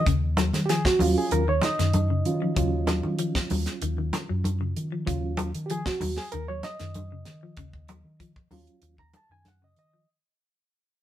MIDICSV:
0, 0, Header, 1, 6, 480
1, 0, Start_track
1, 0, Key_signature, -6, "minor"
1, 0, Tempo, 626959
1, 47, Time_signature, 4, 2, 24, 8
1, 8438, End_track
2, 0, Start_track
2, 0, Title_t, "Reed electric piano"
2, 0, Program_c, 0, 4
2, 502, Note_on_c, 0, 67, 58
2, 530, Note_off_c, 0, 67, 0
2, 534, Note_on_c, 0, 68, 84
2, 644, Note_off_c, 0, 68, 0
2, 656, Note_on_c, 0, 66, 77
2, 767, Note_on_c, 0, 54, 53
2, 769, Note_on_c, 0, 61, 49
2, 775, Note_on_c, 0, 65, 59
2, 884, Note_off_c, 0, 66, 0
2, 903, Note_on_c, 0, 68, 77
2, 1004, Note_off_c, 0, 68, 0
2, 1011, Note_on_c, 0, 70, 83
2, 1086, Note_off_c, 0, 54, 0
2, 1087, Note_off_c, 0, 61, 0
2, 1090, Note_off_c, 0, 65, 0
2, 1122, Note_off_c, 0, 70, 0
2, 1140, Note_on_c, 0, 73, 72
2, 1242, Note_off_c, 0, 73, 0
2, 1255, Note_on_c, 0, 63, 83
2, 1255, Note_on_c, 0, 75, 93
2, 1728, Note_on_c, 0, 54, 46
2, 1730, Note_on_c, 0, 65, 50
2, 1734, Note_on_c, 0, 61, 39
2, 1941, Note_off_c, 0, 54, 0
2, 1942, Note_off_c, 0, 65, 0
2, 1944, Note_off_c, 0, 61, 0
2, 1959, Note_on_c, 0, 54, 51
2, 1966, Note_on_c, 0, 61, 44
2, 1972, Note_on_c, 0, 65, 52
2, 2656, Note_off_c, 0, 63, 0
2, 2656, Note_off_c, 0, 75, 0
2, 3848, Note_off_c, 0, 54, 0
2, 3852, Note_off_c, 0, 61, 0
2, 3855, Note_off_c, 0, 65, 0
2, 3874, Note_on_c, 0, 54, 48
2, 3878, Note_on_c, 0, 61, 43
2, 3879, Note_on_c, 0, 65, 52
2, 4198, Note_off_c, 0, 54, 0
2, 4200, Note_off_c, 0, 61, 0
2, 4201, Note_off_c, 0, 65, 0
2, 4333, Note_on_c, 0, 67, 57
2, 4362, Note_off_c, 0, 67, 0
2, 4372, Note_on_c, 0, 68, 81
2, 4481, Note_off_c, 0, 68, 0
2, 4492, Note_on_c, 0, 66, 72
2, 4720, Note_off_c, 0, 66, 0
2, 4729, Note_on_c, 0, 68, 80
2, 4835, Note_off_c, 0, 68, 0
2, 4838, Note_on_c, 0, 70, 83
2, 4953, Note_off_c, 0, 70, 0
2, 4964, Note_on_c, 0, 73, 78
2, 5072, Note_off_c, 0, 73, 0
2, 5085, Note_on_c, 0, 75, 93
2, 6493, Note_off_c, 0, 75, 0
2, 6517, Note_on_c, 0, 54, 48
2, 6522, Note_on_c, 0, 61, 44
2, 6528, Note_on_c, 0, 65, 53
2, 6841, Note_off_c, 0, 54, 0
2, 6843, Note_off_c, 0, 61, 0
2, 6846, Note_off_c, 0, 65, 0
2, 6885, Note_on_c, 0, 82, 80
2, 6994, Note_off_c, 0, 82, 0
2, 7018, Note_on_c, 0, 81, 83
2, 7125, Note_off_c, 0, 81, 0
2, 7133, Note_on_c, 0, 80, 84
2, 7238, Note_off_c, 0, 80, 0
2, 7259, Note_on_c, 0, 78, 77
2, 7365, Note_off_c, 0, 78, 0
2, 7380, Note_on_c, 0, 75, 72
2, 7482, Note_off_c, 0, 75, 0
2, 7494, Note_on_c, 0, 75, 81
2, 7721, Note_off_c, 0, 75, 0
2, 8438, End_track
3, 0, Start_track
3, 0, Title_t, "Clean electric guitar"
3, 0, Program_c, 1, 27
3, 53, Note_on_c, 1, 49, 85
3, 254, Note_off_c, 1, 49, 0
3, 297, Note_on_c, 1, 54, 70
3, 496, Note_off_c, 1, 54, 0
3, 533, Note_on_c, 1, 53, 76
3, 733, Note_off_c, 1, 53, 0
3, 775, Note_on_c, 1, 54, 73
3, 974, Note_off_c, 1, 54, 0
3, 1014, Note_on_c, 1, 51, 78
3, 1114, Note_off_c, 1, 51, 0
3, 1134, Note_on_c, 1, 51, 66
3, 1334, Note_off_c, 1, 51, 0
3, 1371, Note_on_c, 1, 51, 68
3, 1573, Note_off_c, 1, 51, 0
3, 1610, Note_on_c, 1, 49, 64
3, 1811, Note_off_c, 1, 49, 0
3, 1852, Note_on_c, 1, 53, 68
3, 1948, Note_off_c, 1, 53, 0
3, 1966, Note_on_c, 1, 49, 82
3, 2168, Note_off_c, 1, 49, 0
3, 2206, Note_on_c, 1, 54, 66
3, 2408, Note_off_c, 1, 54, 0
3, 2444, Note_on_c, 1, 53, 72
3, 2647, Note_off_c, 1, 53, 0
3, 2689, Note_on_c, 1, 54, 67
3, 2890, Note_off_c, 1, 54, 0
3, 2927, Note_on_c, 1, 51, 80
3, 3029, Note_off_c, 1, 51, 0
3, 3049, Note_on_c, 1, 51, 62
3, 3251, Note_off_c, 1, 51, 0
3, 3287, Note_on_c, 1, 54, 70
3, 3490, Note_off_c, 1, 54, 0
3, 3528, Note_on_c, 1, 49, 63
3, 3730, Note_off_c, 1, 49, 0
3, 3769, Note_on_c, 1, 53, 65
3, 3866, Note_off_c, 1, 53, 0
3, 3879, Note_on_c, 1, 49, 83
3, 4083, Note_off_c, 1, 49, 0
3, 4127, Note_on_c, 1, 54, 65
3, 4328, Note_off_c, 1, 54, 0
3, 4368, Note_on_c, 1, 53, 76
3, 4568, Note_off_c, 1, 53, 0
3, 4606, Note_on_c, 1, 54, 69
3, 4808, Note_off_c, 1, 54, 0
3, 4853, Note_on_c, 1, 51, 74
3, 4952, Note_off_c, 1, 51, 0
3, 4972, Note_on_c, 1, 54, 62
3, 5172, Note_off_c, 1, 54, 0
3, 5208, Note_on_c, 1, 51, 63
3, 5410, Note_off_c, 1, 51, 0
3, 5452, Note_on_c, 1, 49, 63
3, 5653, Note_off_c, 1, 49, 0
3, 5689, Note_on_c, 1, 53, 63
3, 5786, Note_off_c, 1, 53, 0
3, 5806, Note_on_c, 1, 49, 80
3, 6008, Note_off_c, 1, 49, 0
3, 6045, Note_on_c, 1, 54, 65
3, 6248, Note_off_c, 1, 54, 0
3, 6280, Note_on_c, 1, 53, 73
3, 6485, Note_off_c, 1, 53, 0
3, 6519, Note_on_c, 1, 54, 67
3, 6724, Note_off_c, 1, 54, 0
3, 6883, Note_on_c, 1, 51, 62
3, 7088, Note_off_c, 1, 51, 0
3, 7129, Note_on_c, 1, 51, 65
3, 7332, Note_off_c, 1, 51, 0
3, 7365, Note_on_c, 1, 49, 58
3, 7570, Note_off_c, 1, 49, 0
3, 7606, Note_on_c, 1, 53, 56
3, 7705, Note_off_c, 1, 53, 0
3, 8438, End_track
4, 0, Start_track
4, 0, Title_t, "Fingered electric bass"
4, 0, Program_c, 2, 33
4, 52, Note_on_c, 2, 39, 88
4, 380, Note_off_c, 2, 39, 0
4, 409, Note_on_c, 2, 51, 80
4, 625, Note_off_c, 2, 51, 0
4, 763, Note_on_c, 2, 39, 83
4, 875, Note_off_c, 2, 39, 0
4, 1007, Note_on_c, 2, 39, 76
4, 1222, Note_off_c, 2, 39, 0
4, 1370, Note_on_c, 2, 42, 79
4, 1693, Note_off_c, 2, 42, 0
4, 1727, Note_on_c, 2, 51, 86
4, 1941, Note_off_c, 2, 51, 0
4, 1963, Note_on_c, 2, 39, 85
4, 2294, Note_off_c, 2, 39, 0
4, 2327, Note_on_c, 2, 51, 83
4, 2543, Note_off_c, 2, 51, 0
4, 2688, Note_on_c, 2, 39, 80
4, 2796, Note_off_c, 2, 39, 0
4, 2922, Note_on_c, 2, 39, 76
4, 3138, Note_off_c, 2, 39, 0
4, 3289, Note_on_c, 2, 42, 68
4, 3612, Note_off_c, 2, 42, 0
4, 3649, Note_on_c, 2, 51, 90
4, 3862, Note_off_c, 2, 51, 0
4, 3885, Note_on_c, 2, 39, 85
4, 4215, Note_off_c, 2, 39, 0
4, 4250, Note_on_c, 2, 51, 77
4, 4464, Note_off_c, 2, 51, 0
4, 4606, Note_on_c, 2, 39, 84
4, 4715, Note_off_c, 2, 39, 0
4, 4847, Note_on_c, 2, 39, 74
4, 5061, Note_off_c, 2, 39, 0
4, 5206, Note_on_c, 2, 42, 69
4, 5531, Note_off_c, 2, 42, 0
4, 5562, Note_on_c, 2, 51, 90
4, 5778, Note_off_c, 2, 51, 0
4, 5800, Note_on_c, 2, 39, 90
4, 6133, Note_off_c, 2, 39, 0
4, 6159, Note_on_c, 2, 51, 75
4, 6379, Note_off_c, 2, 51, 0
4, 6516, Note_on_c, 2, 39, 80
4, 6630, Note_off_c, 2, 39, 0
4, 6750, Note_on_c, 2, 39, 74
4, 6972, Note_off_c, 2, 39, 0
4, 7115, Note_on_c, 2, 42, 68
4, 7446, Note_off_c, 2, 42, 0
4, 7475, Note_on_c, 2, 51, 85
4, 7695, Note_off_c, 2, 51, 0
4, 8438, End_track
5, 0, Start_track
5, 0, Title_t, "Muted clean electric guitar strokes"
5, 6759, Note_on_c, 9, 29, 68
5, 6836, Note_off_c, 9, 29, 0
5, 8438, End_track
6, 0, Start_track
6, 0, Title_t, "Drums"
6, 50, Note_on_c, 9, 36, 89
6, 51, Note_on_c, 9, 42, 68
6, 126, Note_off_c, 9, 36, 0
6, 128, Note_off_c, 9, 42, 0
6, 283, Note_on_c, 9, 63, 82
6, 290, Note_on_c, 9, 38, 25
6, 290, Note_on_c, 9, 42, 46
6, 360, Note_off_c, 9, 63, 0
6, 366, Note_off_c, 9, 38, 0
6, 366, Note_off_c, 9, 42, 0
6, 409, Note_on_c, 9, 63, 63
6, 415, Note_on_c, 9, 38, 25
6, 415, Note_on_c, 9, 42, 47
6, 485, Note_off_c, 9, 63, 0
6, 492, Note_off_c, 9, 38, 0
6, 492, Note_off_c, 9, 42, 0
6, 531, Note_on_c, 9, 38, 27
6, 531, Note_on_c, 9, 42, 65
6, 607, Note_off_c, 9, 38, 0
6, 607, Note_off_c, 9, 42, 0
6, 651, Note_on_c, 9, 36, 65
6, 654, Note_on_c, 9, 38, 60
6, 727, Note_off_c, 9, 36, 0
6, 730, Note_off_c, 9, 38, 0
6, 759, Note_on_c, 9, 63, 72
6, 768, Note_on_c, 9, 46, 60
6, 836, Note_off_c, 9, 63, 0
6, 845, Note_off_c, 9, 46, 0
6, 1005, Note_on_c, 9, 42, 62
6, 1082, Note_off_c, 9, 42, 0
6, 1237, Note_on_c, 9, 63, 82
6, 1248, Note_on_c, 9, 38, 27
6, 1248, Note_on_c, 9, 42, 50
6, 1313, Note_off_c, 9, 63, 0
6, 1325, Note_off_c, 9, 38, 0
6, 1325, Note_off_c, 9, 42, 0
6, 1373, Note_on_c, 9, 38, 26
6, 1373, Note_on_c, 9, 42, 48
6, 1450, Note_off_c, 9, 38, 0
6, 1450, Note_off_c, 9, 42, 0
6, 1481, Note_on_c, 9, 42, 62
6, 1483, Note_on_c, 9, 63, 80
6, 1558, Note_off_c, 9, 42, 0
6, 1559, Note_off_c, 9, 63, 0
6, 1725, Note_on_c, 9, 42, 45
6, 1802, Note_off_c, 9, 42, 0
6, 1964, Note_on_c, 9, 36, 85
6, 1964, Note_on_c, 9, 42, 68
6, 2040, Note_off_c, 9, 36, 0
6, 2040, Note_off_c, 9, 42, 0
6, 2199, Note_on_c, 9, 63, 85
6, 2201, Note_on_c, 9, 38, 26
6, 2201, Note_on_c, 9, 42, 46
6, 2275, Note_off_c, 9, 63, 0
6, 2278, Note_off_c, 9, 38, 0
6, 2278, Note_off_c, 9, 42, 0
6, 2322, Note_on_c, 9, 63, 66
6, 2398, Note_off_c, 9, 63, 0
6, 2439, Note_on_c, 9, 42, 67
6, 2516, Note_off_c, 9, 42, 0
6, 2565, Note_on_c, 9, 36, 66
6, 2566, Note_on_c, 9, 38, 58
6, 2642, Note_off_c, 9, 36, 0
6, 2643, Note_off_c, 9, 38, 0
6, 2679, Note_on_c, 9, 46, 58
6, 2685, Note_on_c, 9, 63, 71
6, 2756, Note_off_c, 9, 46, 0
6, 2762, Note_off_c, 9, 63, 0
6, 2803, Note_on_c, 9, 38, 25
6, 2803, Note_on_c, 9, 42, 48
6, 2879, Note_off_c, 9, 38, 0
6, 2879, Note_off_c, 9, 42, 0
6, 2921, Note_on_c, 9, 42, 65
6, 2998, Note_off_c, 9, 42, 0
6, 3162, Note_on_c, 9, 63, 82
6, 3167, Note_on_c, 9, 38, 25
6, 3167, Note_on_c, 9, 42, 51
6, 3238, Note_off_c, 9, 63, 0
6, 3244, Note_off_c, 9, 38, 0
6, 3244, Note_off_c, 9, 42, 0
6, 3401, Note_on_c, 9, 63, 76
6, 3408, Note_on_c, 9, 42, 64
6, 3477, Note_off_c, 9, 63, 0
6, 3485, Note_off_c, 9, 42, 0
6, 3648, Note_on_c, 9, 42, 46
6, 3725, Note_off_c, 9, 42, 0
6, 3884, Note_on_c, 9, 36, 82
6, 3887, Note_on_c, 9, 42, 68
6, 3961, Note_off_c, 9, 36, 0
6, 3964, Note_off_c, 9, 42, 0
6, 4113, Note_on_c, 9, 63, 87
6, 4124, Note_on_c, 9, 42, 46
6, 4190, Note_off_c, 9, 63, 0
6, 4201, Note_off_c, 9, 42, 0
6, 4245, Note_on_c, 9, 42, 47
6, 4322, Note_off_c, 9, 42, 0
6, 4361, Note_on_c, 9, 42, 62
6, 4438, Note_off_c, 9, 42, 0
6, 4484, Note_on_c, 9, 38, 58
6, 4485, Note_on_c, 9, 36, 63
6, 4561, Note_off_c, 9, 38, 0
6, 4562, Note_off_c, 9, 36, 0
6, 4598, Note_on_c, 9, 63, 70
6, 4600, Note_on_c, 9, 46, 58
6, 4674, Note_off_c, 9, 63, 0
6, 4677, Note_off_c, 9, 46, 0
6, 4720, Note_on_c, 9, 38, 26
6, 4797, Note_off_c, 9, 38, 0
6, 4838, Note_on_c, 9, 42, 63
6, 4915, Note_off_c, 9, 42, 0
6, 5078, Note_on_c, 9, 63, 78
6, 5079, Note_on_c, 9, 38, 24
6, 5079, Note_on_c, 9, 42, 43
6, 5154, Note_off_c, 9, 63, 0
6, 5156, Note_off_c, 9, 38, 0
6, 5156, Note_off_c, 9, 42, 0
6, 5202, Note_on_c, 9, 38, 25
6, 5202, Note_on_c, 9, 42, 43
6, 5279, Note_off_c, 9, 38, 0
6, 5279, Note_off_c, 9, 42, 0
6, 5317, Note_on_c, 9, 42, 56
6, 5324, Note_on_c, 9, 63, 76
6, 5394, Note_off_c, 9, 42, 0
6, 5401, Note_off_c, 9, 63, 0
6, 5554, Note_on_c, 9, 38, 25
6, 5554, Note_on_c, 9, 42, 43
6, 5631, Note_off_c, 9, 38, 0
6, 5631, Note_off_c, 9, 42, 0
6, 5793, Note_on_c, 9, 42, 60
6, 5798, Note_on_c, 9, 36, 82
6, 5869, Note_off_c, 9, 42, 0
6, 5874, Note_off_c, 9, 36, 0
6, 5921, Note_on_c, 9, 36, 61
6, 5998, Note_off_c, 9, 36, 0
6, 6036, Note_on_c, 9, 42, 42
6, 6040, Note_on_c, 9, 63, 78
6, 6112, Note_off_c, 9, 42, 0
6, 6116, Note_off_c, 9, 63, 0
6, 6278, Note_on_c, 9, 36, 59
6, 6279, Note_on_c, 9, 42, 56
6, 6354, Note_off_c, 9, 36, 0
6, 6355, Note_off_c, 9, 42, 0
6, 6402, Note_on_c, 9, 36, 63
6, 6478, Note_off_c, 9, 36, 0
6, 6514, Note_on_c, 9, 63, 70
6, 6517, Note_on_c, 9, 46, 54
6, 6590, Note_off_c, 9, 63, 0
6, 6594, Note_off_c, 9, 46, 0
6, 6640, Note_on_c, 9, 42, 44
6, 6717, Note_off_c, 9, 42, 0
6, 6750, Note_on_c, 9, 42, 62
6, 6826, Note_off_c, 9, 42, 0
6, 6878, Note_on_c, 9, 36, 55
6, 6954, Note_off_c, 9, 36, 0
6, 6993, Note_on_c, 9, 42, 50
6, 6994, Note_on_c, 9, 63, 82
6, 7070, Note_off_c, 9, 42, 0
6, 7071, Note_off_c, 9, 63, 0
6, 7235, Note_on_c, 9, 38, 23
6, 7235, Note_on_c, 9, 42, 64
6, 7235, Note_on_c, 9, 63, 74
6, 7311, Note_off_c, 9, 38, 0
6, 7311, Note_off_c, 9, 42, 0
6, 7312, Note_off_c, 9, 63, 0
6, 7476, Note_on_c, 9, 42, 45
6, 7552, Note_off_c, 9, 42, 0
6, 8438, End_track
0, 0, End_of_file